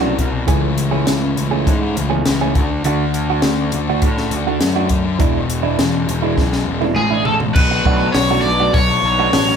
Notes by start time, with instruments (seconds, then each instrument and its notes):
Already playing: picked electric bass C2, distorted electric guitar B2 F#3 B3 D4 F#4
0.01 clean electric guitar F#3 A3 D4 F#4
0.16 distorted electric guitar F#3 B3 D4, muted clean electric guitar stroke, kick, closed hi-hat
0.21 distorted electric guitar F#4
0.32 muted distorted electric guitar stroke
0.47 picked electric bass C#2, distorted electric guitar C#3 E3 A3 C#4 E4, clean electric guitar E3 A3 C#4 G#4, kick, closed hi-hat
0.78 closed hi-hat
0.91 clean electric guitar E3 A3 C#4 G#4, distorted electric guitar A3 C#4 E4
1.07 picked electric bass C#2, distorted electric guitar C#3 E3 A3 C#4 E4, snare, closed hi-hat
1.37 picked electric bass C#2, distorted electric guitar E3 A3 C#4 E4, closed hi-hat
1.51 clean electric guitar E3 A3 C#4 G#4, distorted electric guitar C#4 E4
1.55 distorted electric guitar A3
1.67 picked electric bass G#2, kick, closed hi-hat
1.83 distorted electric guitar A3 C#4 E4
1.97 picked electric bass C#2, distorted electric guitar E3 A3 C#4 E4, closed hi-hat
2.10 clean electric guitar E3 A3 C#4 G#4, muted distorted electric guitar stroke
2.25 picked electric bass C#2, distorted electric guitar C#3 E3 A3 C#4, muted clean electric guitar stroke, snare, closed hi-hat
2.29 distorted electric guitar E4
2.41 clean electric guitar E3 A3 C#4 G#4
2.55 picked electric bass D2, distorted electric guitar D3 A3 D4 F#4, muted clean electric guitar stroke, kick, closed hi-hat
2.71 muted distorted electric guitar stroke
2.84 picked electric bass D2, clean electric guitar D3 A3 D4 F#4, distorted electric guitar D3 A3 D4, closed hi-hat
2.88 distorted electric guitar F#4
3.14 closed hi-hat
3.29 clean electric guitar D3 A3 D4 F#4, distorted electric guitar A3 D4 F#4
3.42 picked electric bass D2, distorted electric guitar D3 A3 D4 F#4, snare, closed hi-hat
3.72 picked electric bass D2, distorted electric guitar D3 A3 D4, closed hi-hat
3.76 distorted electric guitar F#4
3.88 clean electric guitar D3 A3 D4 F#4, distorted electric guitar A3 D4 F#4
4.02 picked electric bass A2, kick, closed hi-hat
4.17 distorted electric guitar A3 D4 F#4, snare
4.31 picked electric bass D2, distorted electric guitar D3 A3 D4 F#4, closed hi-hat
4.47 clean electric guitar D3 A3 D4 F#4, muted distorted electric guitar stroke
4.59 picked electric bass F#2, distorted electric guitar D3 A3 D4 F#4, muted clean electric guitar stroke, snare, closed hi-hat
4.76 clean electric guitar D3 A3 D4 F#4
4.89 distorted electric guitar D3 A3 D4 F#4, muted clean electric guitar stroke, kick, closed hi-hat
5.05 muted distorted electric guitar stroke
5.19 picked electric bass E1, distorted electric guitar E2 B2 E3 G#3 B3 G#4, clean electric guitar E3 G#3 D4 E4, kick, closed hi-hat
5.50 closed hi-hat
5.63 clean electric guitar E3 G#3 D4 E4, distorted electric guitar G#3 B3 G#4
5.67 distorted electric guitar E3
5.79 picked electric bass E1, distorted electric guitar E2 B2 E3 G#3 B3 G#4, snare, closed hi-hat
6.08 picked electric bass E1, distorted electric guitar E3 G#3 B3 G#4, closed hi-hat
6.22 clean electric guitar E3 G#3 D4 E4, distorted electric guitar B3 G#4
6.27 distorted electric guitar E3 G#3
6.37 picked electric bass B1, kick, snare
6.53 distorted electric guitar E3 G#3 B3 G#4, snare
6.65 picked electric bass E1, distorted electric guitar E3 G#3
6.70 distorted electric guitar B3 G#4
6.81 clean electric guitar E3 G#3 D4 E4, muted distorted electric guitar stroke, high tom
6.95 picked electric bass A1, distorted electric guitar E2 B2 E3 G#3 B3, overdriven electric guitar G#4, muted clean electric guitar stroke, mid tom
6.99 distorted electric guitar G#4
7.11 clean electric guitar E3 G#3 D4 E4
7.25 distorted electric guitar E3 G#3 B3, overdriven electric guitar A4, muted clean electric guitar stroke, floor tom
7.29 distorted electric guitar G#4
7.40 muted distorted electric guitar stroke, floor tom
7.54 picked electric bass B1, distorted electric guitar B2 F#3 B3 D4 F#4, overdriven electric guitar B4, analog synth pad B4 A5, kick, crash
7.71 muted clean electric guitar stroke
7.84 picked electric bass B1, distorted electric guitar F#3 B3 D4 F#4, clean electric guitar F#3 A3 D4 F#4, kick
8.13 picked electric bass B1, distorted electric guitar B2 F#3 B3 D4, overdriven electric guitar C#5, muted clean electric guitar stroke, snare, open hi-hat
8.17 distorted electric guitar F#4
8.30 clean electric guitar F#3 A3 D4 F#4, distorted electric guitar B3 D4 F#4
8.41 picked electric bass B1, overdriven electric guitar D5
8.59 clean electric guitar F#3 A3 D4 F#4, distorted electric guitar B3 D4 F#4
8.74 picked electric bass B1, overdriven electric guitar C#5, muted distorted electric guitar stroke, muted clean electric guitar stroke, kick, open hi-hat
8.88 distorted electric guitar B3 D4 F#4
9.03 picked electric bass B1, distorted electric guitar F#3 B3 D4 F#4
9.18 clean electric guitar F#3 A3 D4 F#4, distorted electric guitar B3 D4 F#4
9.33 picked electric bass A1, distorted electric guitar B2 F#3 B3 D4 F#4, snare, open hi-hat
9.48 distorted electric guitar B3 D4 F#4, muted clean electric guitar stroke